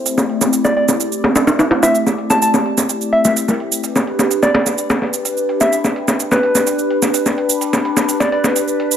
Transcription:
Already playing: A3 C4 E4 G4
0.06 D5, closed hi-hat, shaker
0.18 snare, shaker
0.30 closed hi-hat
0.41 snare, shaker
0.53 closed hi-hat, shaker
0.65 D5, snare, shaker
0.77 D5, closed hi-hat
0.88 snare, shaker
1.00 closed hi-hat, shaker
1.12 shaker
1.24 snare, closed hi-hat
1.36 snare, closed hi-hat, shaker
1.47 snare, closed hi-hat, shaker
1.59 snare, closed hi-hat, shaker
1.71 snare, closed hi-hat
1.83 E5, snare, closed hi-hat, shaker
1.95 closed hi-hat, shaker
2.07 snare, shaker
2.18 closed hi-hat
2.30 A5, snare, shaker
2.42 A5, closed hi-hat, shaker
2.54 snare, shaker
2.66 closed hi-hat
2.78 snare, shaker
2.89 closed hi-hat, shaker
3.01 shaker
3.13 E5, closed hi-hat
3.25 E5, snare, shaker
3.37 closed hi-hat, shaker
3.48 snare, shaker
3.60 closed hi-hat
3.72 shaker
3.83 D4 B4, closed hi-hat, shaker
3.96 snare, shaker
4.07 closed hi-hat
4.19 snare, shaker
4.31 closed hi-hat, shaker
4.43 D5, snare, shaker
4.54 D5, snare, closed hi-hat
4.66 snare, shaker
4.78 closed hi-hat, shaker
4.90 snare, closed hi-hat, shaker
5.02 snare
5.13 closed hi-hat, shaker
5.25 closed hi-hat, shaker
5.37 shaker
5.49 closed hi-hat
5.61 E5, snare, shaker
5.73 closed hi-hat, shaker
5.84 snare, shaker
5.96 closed hi-hat
6.08 snare, shaker
6.20 closed hi-hat, shaker
6.31 B4, snare, shaker
6.43 closed hi-hat
6.55 snare, shaker
6.67 closed hi-hat, shaker
6.79 shaker
6.90 closed hi-hat
7.02 snare, shaker
7.14 closed hi-hat, shaker
7.26 snare, shaker
7.38 closed hi-hat
7.49 shaker
7.61 closed hi-hat, shaker
7.73 snare, shaker
7.85 closed hi-hat
7.97 snare, shaker
8.09 closed hi-hat, shaker
8.20 D5, snare, shaker
8.32 D5, closed hi-hat
8.44 snare, shaker
8.56 closed hi-hat, shaker
8.68 shaker
8.80 closed hi-hat
8.91 shaker

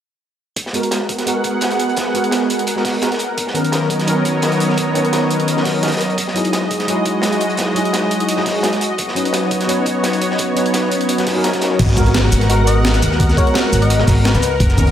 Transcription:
0.56 B3 G#4 A#4 F#5, kick, closed hi-hat
0.66 snare
0.73 G#3 B3 F#4 A#4, closed hi-hat
0.83 closed hi-hat
0.91 snare, closed hi-hat
1.09 kick, closed hi-hat
1.18 snare, closed hi-hat
1.26 G#3 B3 F#4 A#4, closed hi-hat
1.44 kick, closed hi-hat
1.61 snare, closed hi-hat
1.70 closed hi-hat
1.79 closed hi-hat
1.89 closed hi-hat
1.97 kick, snare, closed hi-hat
2.13 G#3 B3 F#4 A#4, closed hi-hat
2.24 closed hi-hat
2.31 snare, closed hi-hat
2.50 closed hi-hat
2.59 closed hi-hat
2.67 closed hi-hat
2.76 G#3 B3 F#4 A#4, snare
2.85 kick, snare, closed hi-hat, open hi-hat
3.02 G#3 B3 F#4 A#4, snare, closed hi-hat
3.12 snare, closed hi-hat
3.19 closed hi-hat
3.37 F#3 B3 C#5 D#5, kick, closed hi-hat
3.47 snare
3.53 D#3 B3 C#4 A#4, closed hi-hat
3.64 closed hi-hat
3.72 snare, closed hi-hat
3.90 kick, closed hi-hat
4.00 snare, closed hi-hat
4.06 D#3 B3 C#4 A#4, closed hi-hat
4.25 kick, closed hi-hat
4.42 snare, closed hi-hat
4.52 closed hi-hat
4.60 closed hi-hat
4.69 snare
4.78 kick, closed hi-hat
4.94 D#3 B3 C#4 A#4, closed hi-hat
5.05 closed hi-hat
5.13 snare, closed hi-hat
5.30 closed hi-hat
5.40 closed hi-hat
5.48 closed hi-hat
5.56 D#3 B3 C#4 A#4, snare
5.65 kick, snare, closed hi-hat, open hi-hat
5.82 D#3 B3 C#4 A#4, snare, closed hi-hat
5.87 snare, closed hi-hat
5.92 snare, closed hi-hat
5.97 snare, closed hi-hat
6.01 closed hi-hat
6.10 closed hi-hat
6.18 G#3 F#4, kick, closed hi-hat
6.28 snare
6.34 F#3 D#4 E4 G#4, closed hi-hat
6.44 closed hi-hat
6.53 snare, closed hi-hat
6.71 kick, closed hi-hat
6.79 snare, closed hi-hat
6.87 F#3 D#4 E4 G#4, closed hi-hat
7.05 kick, closed hi-hat
7.22 snare, closed hi-hat
7.32 closed hi-hat
7.40 closed hi-hat
7.50 closed hi-hat
7.57 kick, snare, closed hi-hat
7.74 F#3 D#4 E4 G#4, closed hi-hat
7.85 closed hi-hat
7.93 snare, closed hi-hat
8.11 closed hi-hat
8.20 closed hi-hat
8.29 closed hi-hat
8.36 F#3 D#4 E4 G#4, snare
8.46 kick, snare, closed hi-hat, open hi-hat
8.63 F#3 D#4 E4 G#4, snare, closed hi-hat
8.72 snare, closed hi-hat
8.81 B3 C#5, closed hi-hat
8.98 kick, closed hi-hat
9.08 snare
9.15 F#3 C#4 D#4 B4, closed hi-hat
9.25 closed hi-hat
9.33 snare, closed hi-hat
9.51 kick, closed hi-hat
9.60 snare, closed hi-hat
9.67 F#3 C#4 D#4 B4, closed hi-hat
9.86 kick, closed hi-hat
10.04 snare, closed hi-hat
10.13 closed hi-hat
10.21 closed hi-hat
10.31 snare
10.38 kick, closed hi-hat
10.55 F#3 C#4 D#4 B4, closed hi-hat
10.66 closed hi-hat
10.74 snare, closed hi-hat
10.92 closed hi-hat
11.01 closed hi-hat
11.09 closed hi-hat
11.18 F#3 C#4 D#4 B4, snare, closed hi-hat
11.27 kick, snare, closed hi-hat, open hi-hat
11.34 F#3 C#4 D#4 A#4
11.44 snare, closed hi-hat
11.53 kick, snare, closed hi-hat
11.61 snare, closed hi-hat
11.79 G#1 A#4 F#5, kick, closed hi-hat, crash, impact
11.89 snare, shaker
11.96 G#3 B3 F#4 A#4, kick, closed hi-hat, shaker
12.06 closed hi-hat
12.14 snare, closed hi-hat
12.32 G#1, closed hi-hat, shaker
12.41 snare, closed hi-hat
12.48 G#3 B3 F#4 A#4, closed hi-hat
12.67 D#5, closed hi-hat, shaker
12.85 snare, closed hi-hat
12.94 cross-stick, closed hi-hat, shaker
13.02 D#2, closed hi-hat, shaker
13.11 snare
13.20 kick, closed hi-hat
13.29 snare, shaker
13.36 G#3 B3 F#4 A#4 C#5, kick, closed hi-hat, shaker
13.47 closed hi-hat
13.54 snare, closed hi-hat
13.72 G#1, closed hi-hat, shaker
13.82 D#5, closed hi-hat
13.90 closed hi-hat
13.98 G#3 B3 F#4 A#4, cross-stick, snare
14.07 G#1, kick, snare, closed hi-hat, open hi-hat, shaker
14.24 G#3 B3 F#4 A#4, snare, closed hi-hat
14.34 C#2 B4, snare, closed hi-hat, shaker
14.42 closed hi-hat, shaker
14.60 F#1 D#5 C#6, kick, closed hi-hat
14.69 snare, shaker
14.76 D#3 B3 C#4 A#4, kick, closed hi-hat, shaker
14.87 closed hi-hat

